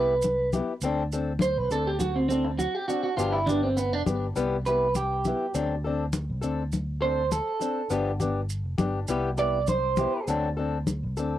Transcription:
0.00 0.59 C2 loud
0.00 0.14 B3 soft
0.00 0.13 E4 soft
0.00 0.13 G4 medium
0.00 0.49 B4 medium
0.22 high conga medium
0.22 maracas loud
0.53 0.73 B3 soft
0.53 0.72 E4 soft
0.53 0.72 G4 soft
0.53 muted conga soft
0.53 high conga medium
0.53 maracas medium
0.81 1.59 D2 medium
0.81 1.02 C4 medium
0.81 1.02 D4 medium
0.81 1.02 A4 medium
0.81 muted steel-string acoustic guitar stroke medium
0.81 muted conga soft
0.81 maracas loud
1.12 1.32 C4 soft
1.12 1.31 D4 medium
1.12 1.31 A4 medium
1.12 maracas medium
1.39 1.58 C5 medium
1.39 high conga medium
1.39 maracas medium
1.57 1.68 C2 medium
1.57 1.71 B4 medium
1.70 2.65 D2 medium
1.70 1.90 C4 soft
1.70 1.90 D4 soft
1.70 1.90 A4 soft
1.70 1.87 A4 medium
1.70 maracas medium
1.87 1.99 G4 medium
2.00 2.16 F#4 medium
2.00 muted conga soft
2.00 high conga medium
2.00 maracas medium
2.16 2.27 C4 medium
2.29 2.45 C4 medium
2.29 2.50 C4 soft
2.29 2.50 D4 soft
2.29 2.49 A4 medium
2.29 muted conga soft
2.29 maracas medium
2.45 muted clean electric guitar stroke medium
2.59 2.75 F#4 medium
2.59 high conga medium
2.59 maracas medium
2.75 2.88 G4 loud
2.88 3.08 C4 soft
2.88 3.08 D4 medium
2.88 3.02 F#4 medium
2.88 muted conga soft
2.88 maracas medium
3.03 3.17 F#4 medium
3.17 3.93 G1 medium
3.17 3.37 F3 medium
3.17 3.37 B3 medium
3.17 3.37 D4 medium
3.17 3.34 F4 medium
3.17 3.38 G4 medium
3.17 muted conga soft
3.17 maracas medium
3.32 3.47 E4 medium
3.46 3.63 D4 medium
3.46 3.68 D4 medium
3.46 3.67 G4 medium
3.46 low conga medium
3.46 maracas medium
3.50 3.68 B3 soft
3.63 3.77 C4 medium
3.77 3.93 B3 medium
3.77 maracas medium
3.93 4.04 F1 medium
3.93 4.02 D4 medium
4.06 4.31 G1 medium
4.06 4.26 B3 soft
4.06 4.26 D4 soft
4.06 4.26 G4 soft
4.06 high conga medium
4.06 maracas medium
4.36 5.32 C2 loud
4.36 4.55 G3 medium
4.36 4.56 B3 medium
4.36 4.55 E4 medium
4.36 4.56 G4 medium
4.36 muted conga soft
4.36 maracas medium
4.66 4.87 B3 soft
4.66 4.86 E4 soft
4.66 4.86 G4 medium
4.66 4.95 B4 medium
4.66 muted conga soft
4.66 maracas medium
4.95 5.52 G4 medium
4.95 high conga medium
4.95 maracas medium
5.24 5.46 B3 soft
5.24 5.45 E4 soft
5.24 5.45 G4 soft
5.24 muted conga soft
5.24 high conga medium
5.24 maracas medium
5.54 6.31 D2 medium
5.54 5.74 F#3 medium
5.54 5.74 C4 medium
5.54 5.74 D4 medium
5.54 5.74 A4 medium
5.54 muted conga soft
5.54 maracas medium
5.84 6.05 C4 medium
5.84 6.04 D4 medium
5.84 6.04 A4 medium
6.13 high conga medium
6.13 maracas medium
6.30 6.41 C2 medium
6.41 7.39 D2 medium
6.41 6.63 C4 soft
6.41 6.62 D4 medium
6.41 6.62 A4 medium
6.41 maracas medium
6.72 muted conga soft
6.72 high conga medium
6.72 maracas medium
7.01 7.22 C4 soft
7.01 7.22 D4 soft
7.01 7.21 A4 medium
7.01 7.32 C5 loud
7.01 muted conga soft
7.32 7.88 A4 medium
7.32 high conga medium
7.32 maracas medium
7.60 7.81 C4 soft
7.60 7.81 D4 medium
7.60 7.80 A4 medium
7.60 muted conga soft
7.60 maracas medium
7.90 8.65 G1 loud
7.90 8.10 F3 medium
7.90 8.10 B3 medium
7.90 8.10 D4 medium
7.90 8.11 G4 medium
7.90 muted conga soft
7.90 maracas medium
8.20 8.41 B3 soft
8.20 8.40 D4 medium
8.20 8.40 G4 medium
8.20 low conga medium
8.20 maracas medium
8.50 maracas medium
8.65 8.77 F1 medium
8.78 9.04 G1 medium
8.78 8.99 B3 soft
8.78 8.99 D4 medium
8.78 8.98 G4 medium
8.78 high conga medium
8.78 maracas medium
9.08 10.05 C2 loud
9.08 9.28 G3 medium
9.08 9.29 B3 medium
9.08 9.29 E4 medium
9.08 9.29 G4 loud
9.08 muted conga soft
9.08 maracas medium
9.37 9.59 B3 soft
9.37 9.58 E4 soft
9.37 9.58 G4 soft
9.37 9.68 D5 loud
9.37 muted conga soft
9.37 maracas medium
9.67 10.25 C5 medium
9.67 high conga medium
9.67 maracas medium
9.96 10.19 E4 medium
9.96 10.18 G4 medium
9.96 muted conga soft
9.96 high conga medium
9.96 maracas medium
10.01 10.19 B3 soft
10.28 11.05 D2 medium
10.28 10.47 F#3 medium
10.28 10.48 C4 medium
10.28 10.48 D4 medium
10.28 10.48 A4 medium
10.28 muted conga soft
10.28 maracas medium
10.57 10.78 C4 medium
10.57 10.77 D4 medium
10.57 10.77 A4 medium
10.87 high conga medium
10.87 maracas medium
11.03 11.15 C2 medium
11.17 11.39 D2 medium
11.17 11.37 C4 soft
11.17 11.37 D4 soft
11.17 11.36 A4 medium
11.17 maracas medium

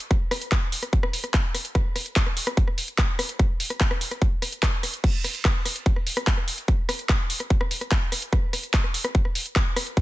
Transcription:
0.00 closed hi-hat medium
0.11 kick loud
0.11 cross-stick soft
0.11 closed hi-hat medium
0.31 cross-stick medium
0.31 open hi-hat loud
0.42 closed hi-hat medium
0.52 kick loud
0.52 cross-stick soft
0.52 clap loud
0.52 closed hi-hat medium
0.72 open hi-hat loud
0.83 cross-stick soft
0.83 closed hi-hat medium
0.93 kick loud
0.93 closed hi-hat medium
1.03 cross-stick medium
1.13 open hi-hat loud
1.24 cross-stick soft
1.24 closed hi-hat medium
1.34 kick loud
1.34 clap loud
1.34 closed hi-hat medium
1.55 cross-stick soft
1.55 open hi-hat loud
1.65 closed hi-hat medium
1.75 kick loud
1.75 cross-stick medium
1.75 closed hi-hat medium
1.96 cross-stick soft
1.96 open hi-hat loud
2.06 closed hi-hat medium
2.16 kick loud
2.16 clap loud
2.16 closed hi-hat medium
2.26 cross-stick soft
2.37 open hi-hat loud
2.47 cross-stick medium
2.47 closed hi-hat medium
2.57 kick loud
2.57 closed hi-hat medium
2.68 cross-stick soft
2.78 open hi-hat loud
2.88 closed hi-hat medium
2.98 kick loud
2.98 cross-stick soft
2.98 clap loud
2.98 closed hi-hat medium
3.19 cross-stick medium
3.19 open hi-hat loud
3.29 closed hi-hat medium
3.39 kick loud
3.39 cross-stick soft
3.39 closed hi-hat medium
3.60 open hi-hat loud
3.70 cross-stick soft
3.70 closed hi-hat medium
3.81 kick loud
3.81 clap loud
3.81 closed hi-hat medium
3.91 cross-stick medium
4.01 open hi-hat loud
4.11 cross-stick soft
4.11 closed hi-hat medium
4.22 kick loud
4.22 closed hi-hat medium
4.42 cross-stick soft
4.42 open hi-hat loud
4.52 closed hi-hat medium
4.63 kick loud
4.63 cross-stick medium
4.63 clap loud
4.63 closed hi-hat medium
4.83 cross-stick soft
4.83 open hi-hat loud
4.94 closed hi-hat medium
5.04 kick loud
5.04 closed hi-hat medium
5.04 crash medium
5.24 cross-stick soft
5.24 open hi-hat loud
5.35 closed hi-hat medium
5.45 kick loud
5.45 cross-stick medium
5.45 clap loud
5.45 closed hi-hat medium
5.66 cross-stick soft
5.66 open hi-hat loud
5.76 closed hi-hat medium
5.86 kick loud
5.86 closed hi-hat medium
5.96 cross-stick soft
6.07 open hi-hat loud
6.17 cross-stick medium
6.17 closed hi-hat medium
6.27 kick loud
6.27 clap loud
6.27 closed hi-hat medium
6.37 cross-stick soft
6.48 open hi-hat loud
6.58 closed hi-hat medium
6.68 kick loud
6.68 cross-stick soft
6.68 closed hi-hat medium
6.89 cross-stick medium
6.89 open hi-hat loud
6.99 closed hi-hat medium
7.09 kick loud
7.09 cross-stick soft
7.09 clap loud
7.09 closed hi-hat medium
7.30 open hi-hat loud
7.40 cross-stick soft
7.40 closed hi-hat medium
7.50 kick loud
7.50 closed hi-hat medium
7.61 cross-stick medium
7.71 open hi-hat loud
7.81 cross-stick soft
7.81 closed hi-hat medium
7.92 kick loud
7.92 clap loud
7.92 closed hi-hat medium
8.12 cross-stick soft
8.12 open hi-hat loud
8.22 closed hi-hat medium
8.33 kick loud
8.33 cross-stick medium
8.33 closed hi-hat medium
8.53 cross-stick soft
8.53 open hi-hat loud
8.63 closed hi-hat medium
8.74 kick loud
8.74 clap loud
8.74 closed hi-hat medium
8.84 cross-stick soft
8.94 open hi-hat loud
9.05 cross-stick medium
9.05 closed hi-hat medium
9.15 kick loud
9.15 closed hi-hat medium
9.25 cross-stick soft
9.35 open hi-hat loud
9.46 closed hi-hat medium
9.56 kick loud
9.56 cross-stick soft
9.56 clap loud
9.56 closed hi-hat medium
9.76 cross-stick medium
9.76 open hi-hat loud
9.87 closed hi-hat medium
9.97 kick loud
9.97 cross-stick soft
9.97 closed hi-hat medium

